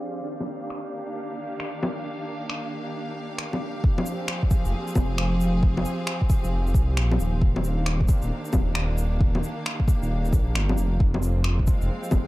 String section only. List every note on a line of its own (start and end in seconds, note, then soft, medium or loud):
0.00 0.26 F3 medium
0.00 1.01 C4 medium
0.00 11.00 G4 medium
0.00 0.26 G#4 medium
0.00 11.00 F5 medium
0.26 3.84 D#3 medium
0.34 4.98 A#3 medium
0.59 4.98 D4 medium
3.84 7.42 F3 medium
4.00 8.88 C4 medium
4.17 7.42 G#4 medium
7.42 11.00 D#3 medium
7.56 12.27 A#3 medium
7.56 11.78 D4 medium
11.00 12.27 F3 medium
11.10 12.27 F4 medium
11.16 12.27 C4 medium
11.50 12.27 G#3 medium
11.69 12.27 F5 medium